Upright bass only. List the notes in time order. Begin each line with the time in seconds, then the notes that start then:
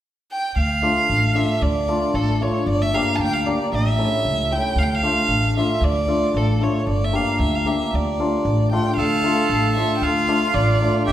0.56 D2
1.10 A1
1.62 D2
2.14 A1
2.67 G1
3.18 D2
3.72 A1
4.25 C#2
4.76 D2
5.28 A1
5.81 D2
6.34 A1
6.87 G1
7.39 D2
7.93 D2
8.45 A1
8.97 D2
9.50 A1
10.01 D2
10.54 A1
11.08 G1